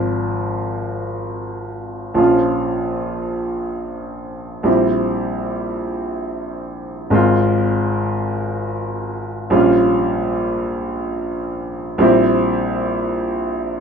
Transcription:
0.00 2.13 G#1 medium
0.00 2.13 F3 medium
0.00 2.14 C4 medium
0.00 2.15 F4 medium
2.14 4.61 A#1 medium
2.14 4.62 F3 medium
2.14 4.62 C#4 medium
2.14 4.63 F4 medium
4.63 7.09 A#1 medium
4.63 7.09 G3 medium
4.63 7.10 C4 medium
4.63 7.11 E4 medium
7.10 9.49 G#1 medium
7.10 9.49 G#3 medium
7.10 9.50 C4 medium
7.10 9.50 F4 medium
9.50 11.96 A#1 medium
9.50 11.97 G3 medium
9.50 11.97 C#4 medium
9.50 11.98 F4 medium
11.98 13.80 A#1 medium
11.98 13.80 G3 medium
11.98 13.80 C4 medium
11.98 13.80 E4 medium

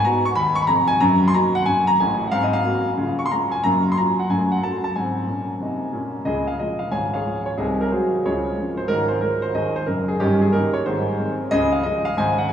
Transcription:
0.05 0.22 B3 soft
0.05 0.23 D#4 soft
0.05 0.23 F#4 medium
0.05 0.22 A#5 loud
0.25 0.35 C#6 loud
0.35 0.64 D#2 medium
0.35 0.54 B5 loud
0.55 0.62 C#6 loud
0.62 0.68 B5 loud
0.67 0.94 F1 medium
0.67 0.94 F2 medium
0.67 0.86 A#5 loud
0.88 0.98 G#5 loud
1.00 1.29 F#2 loud
1.00 1.24 A#5 loud
1.28 1.34 C6 loud
1.34 1.53 A#3 medium
1.34 1.53 D#4 medium
1.34 1.53 F#4 medium
1.34 1.53 A#5 loud
1.55 1.65 F#5 loud
1.66 1.94 F#2 medium
1.66 1.85 G#5 loud
1.87 1.98 A#5 loud
2.00 2.27 A1 medium
2.00 2.27 A2 medium
2.00 2.23 G#5 medium
2.27 2.33 F#5 medium
2.31 2.60 G#2 medium
2.31 2.51 C4 medium
2.31 2.43 F5 loud
2.43 2.54 D#5 medium
2.53 2.91 F5 loud
2.65 2.83 A#3 medium
2.65 2.84 C4 soft
2.65 2.84 F#4 medium
2.97 3.26 C#3 medium
2.97 3.17 F4 medium
3.19 3.25 C#6 medium
3.26 3.31 C6 loud
3.31 3.50 G#3 soft
3.31 3.50 C#4 soft
3.31 3.50 F4 soft
3.31 3.50 A#5 medium
3.52 3.62 G#5 loud
3.64 3.92 F#2 medium
3.64 3.83 A#3 medium
3.64 3.87 A#5 loud
3.92 3.97 C6 medium
3.98 4.16 F#3 soft
3.98 4.16 C#4 soft
3.98 4.16 F4 medium
3.98 4.15 A#5 medium
4.19 4.29 F#5 medium
4.29 4.57 F#2 medium
4.29 4.49 A3 soft
4.29 4.48 G#5 medium
4.52 4.61 F#5 medium
4.63 4.81 F#3 soft
4.63 4.81 C#4 soft
4.63 4.82 A4 soft
4.63 4.81 A5 medium
4.84 4.94 A5 medium
4.96 5.22 G#2 medium
4.96 5.23 C4 medium
4.96 5.97 G#5 medium
5.27 5.54 A#2 medium
5.27 5.55 C#4 soft
5.60 5.87 C3 medium
5.60 5.88 D#4 medium
5.93 6.19 A#2 medium
5.93 6.21 C#4 medium
6.25 6.54 C#2 medium
6.25 6.54 C#3 medium
6.25 6.47 G#4 medium
6.25 6.44 D#5 medium
6.47 6.57 F5 medium
6.59 6.78 F3 soft
6.59 6.78 G#3 soft
6.59 6.78 F4 soft
6.59 6.78 D#5 medium
6.79 6.89 F5 medium
6.91 7.19 G#1 soft
6.91 7.20 G#2 medium
6.91 7.12 C#5 medium
6.91 7.12 F5 medium
6.91 7.10 G#5 medium
7.14 7.45 G#4 medium
7.14 7.44 C#5 medium
7.14 7.42 F5 medium
7.25 7.43 F3 soft
7.25 7.44 G#3 soft
7.25 7.44 F4 soft
7.46 7.56 C#5 medium
7.58 7.86 C2 medium
7.58 7.86 C3 medium
7.58 7.78 C4 medium
7.58 7.78 D#4 medium
7.58 7.76 G#4 medium
7.81 7.90 A#4 medium
7.92 8.10 F#3 soft
7.92 8.10 G#3 soft
7.92 8.11 D#4 soft
7.92 8.23 F#4 medium
7.92 8.23 G#4 medium
7.92 8.19 C5 medium
8.25 8.52 C#2 medium
8.25 8.52 C#3 medium
8.25 8.76 F4 medium
8.25 8.75 G#4 medium
8.25 8.71 C#5 medium
8.57 8.75 F3 soft
8.57 8.76 G#3 soft
8.57 8.76 C#4 soft
8.77 8.87 C5 medium
8.88 9.17 G#1 medium
8.88 9.17 G#2 medium
8.88 9.09 D#4 medium
8.88 9.07 A#4 loud
9.08 9.19 C5 medium
9.21 9.39 D#3 soft
9.21 9.40 G#3 soft
9.21 9.40 D#4 soft
9.21 9.40 A#4 medium
9.42 9.52 C5 medium
9.54 9.82 D#2 medium
9.54 9.83 D#3 medium
9.54 9.75 G#4 medium
9.54 9.74 C5 medium
9.54 9.73 D#5 medium
9.76 9.86 C5 medium
9.87 10.14 F#1 medium
9.87 10.13 F#2 medium
9.87 10.05 A#4 medium
10.08 10.18 G#4 medium
10.20 10.48 G1 medium
10.20 10.49 G2 medium
10.20 10.41 C#4 medium
10.20 10.41 D#4 medium
10.20 10.38 G4 loud
10.42 10.52 G#4 medium
10.53 10.71 D#3 soft
10.53 10.71 A#3 soft
10.53 10.72 C#4 soft
10.53 10.74 D#4 medium
10.53 10.74 G4 medium
10.53 10.71 A#4 medium
10.73 10.84 C#5 medium
10.86 11.14 G#1 medium
10.86 11.14 G#2 medium
10.86 11.37 D#4 medium
10.86 11.37 G#4 medium
10.86 11.32 C5 medium
11.18 11.36 D#3 soft
11.18 11.37 G#3 soft
11.18 11.37 C4 medium
11.51 11.80 C#2 medium
11.51 11.79 C#3 medium
11.51 11.72 G#4 medium
11.51 11.70 D#5 loud
11.72 11.83 F5 medium
11.83 12.02 F3 soft
11.83 12.03 G#3 medium
11.83 12.03 C#4 soft
11.83 12.02 D#5 loud
12.05 12.15 F5 loud
12.17 12.45 G#1 medium
12.17 12.45 G#2 medium
12.17 12.38 C5 medium
12.17 12.38 D#5 medium
12.17 12.36 G#5 loud
12.38 12.48 F#5 loud
12.49 12.53 F#3 medium
12.49 12.53 G#3 soft
12.49 12.53 C4 medium
12.49 12.53 G#5 medium

